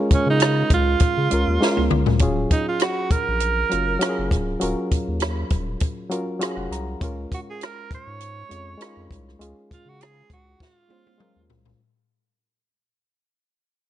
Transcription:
Already playing: G#3 C#4 F4 G#4 A#4
0.11 C#3 C#4, kick, closed hi-hat
0.26 C#3 D#4
0.40 cross-stick, closed hi-hat
0.70 C#2 F4, kick, closed hi-hat
1.00 kick, closed hi-hat
1.17 C#3
1.30 C#2 G#3 C#4 F4 A#4, closed hi-hat
1.47 D#2
1.61 G#3 C#4 F4 A#4, snare
1.77 C#2, high tom
1.91 C#2, mid tom
2.06 D2, floor tom
2.19 D#1 F#3 C#4 F4 G#4, kick, closed hi-hat
2.51 D#4, kick, closed hi-hat
2.69 F4
2.80 F#4, cross-stick, closed hi-hat
3.10 A#1 A#4, kick, closed hi-hat
3.28 A#1
3.40 closed hi-hat
3.70 F#1 F#3 C#4 F4 A#4, closed hi-hat
3.99 F#3 C#4 F4 F#4, cross-stick, closed hi-hat
4.09 G#4
4.18 F#1
4.31 D1, kick, cross-stick, closed hi-hat
4.60 D#1 F#3 C#4 F4 A#4, closed hi-hat
4.91 D#2, kick, closed hi-hat
5.08 D#2
5.20 cross-stick, closed hi-hat
5.50 D#1, kick, closed hi-hat
5.80 kick, closed hi-hat
6.10 F#3 C#4 F4 A#4, closed hi-hat
6.39 F#3 C#4 F4 G#4 F5, cross-stick, closed hi-hat
6.57 F1 F#5
6.71 C2 A#5, cross-stick, closed hi-hat
7.01 C#2 G#3 C#4 F4 A#4, kick, closed hi-hat
7.32 F#4, kick, closed hi-hat
7.50 G#4
7.61 A#4, cross-stick, closed hi-hat
7.91 G#2, kick, closed hi-hat
7.95 C#5
8.07 G#2
8.20 closed hi-hat
8.49 F2 G#3 C#4 F4 C#5, closed hi-hat
8.78 G#3 C#4 D#4 A#4, closed hi-hat
8.82 cross-stick
8.86 F4
8.97 F2
9.11 C2, kick, closed hi-hat
9.29 cross-stick
9.39 C#2 G#3 C#4 F4 G#4, closed hi-hat
9.71 C#3 F4, kick, closed hi-hat
9.86 C#3 F#4
10.01 G#4, cross-stick, closed hi-hat
10.30 C#2 F#4, kick, closed hi-hat
10.60 F4, kick, snare
10.88 G#3 C#4 F4 C5, high tom
11.07 high tom
11.18 G#3 C#4 F4 A#4, mid tom
11.36 D#2
11.50 C2, floor tom
11.65 floor tom

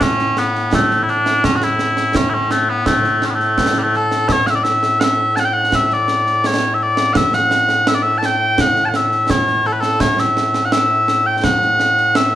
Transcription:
Already playing: A2
0.01 C#4, concert bass drum, snare
0.19 snare
0.37 B3, snare
0.55 snare
0.73 A3, concert bass drum, snare
0.91 snare
1.03 E4
1.08 D4, snare
1.26 snare
1.44 C#4, concert bass drum, snare
1.56 F#4
1.62 E4, snare
1.79 snare
1.97 snare
2.15 C#4, concert bass drum, snare
2.30 E4
2.34 C#4
2.51 A3, snare
2.70 B3
2.86 A3, concert bass drum, snare
3.04 snare
3.22 C#4, snare
3.30 B3
3.35 A3
3.40 snare
3.58 concert bass drum, snare
3.78 G3
3.83 A3
3.94 A4, snare
4.11 snare
4.29 C#5 E5, concert bass drum, snare
4.47 E5 F#5, snare
4.55 D5
4.63 E5, snare
4.83 snare
5.00 E5 F#5, snare
5.36 F#5 A5, snare
5.45 G5
5.53 F#5
5.72 E5, concert bass drum, snare
5.85 E5
5.90 D5, snare
6.08 snare
6.27 snare
6.44 C#5, snare
6.62 snare
6.74 E5
6.83 D5
6.97 snare
7.13 E5 F#5, concert bass drum, snare
7.33 F#5, snare
7.51 snare
7.69 snare
7.87 E5, snare
7.95 D5
8.02 E5
8.18 A5
8.23 G5, snare
8.58 F#5, concert bass drum, snare
8.76 snare
8.85 F#5 A5
8.94 E5, snare
9.12 snare
9.30 C#5, concert bass drum, snare
9.47 snare
9.65 A4, snare
9.73 B4
9.81 A4, snare
10.00 C#5, concert bass drum, snare
10.18 E5, snare
10.37 snare
10.54 snare
10.65 F#5
10.72 E5, snare
11.08 snare
11.26 G5
11.36 G5
11.44 F#5, concert bass drum, snare
11.62 snare
11.80 snare
11.98 snare
12.15 E5, snare

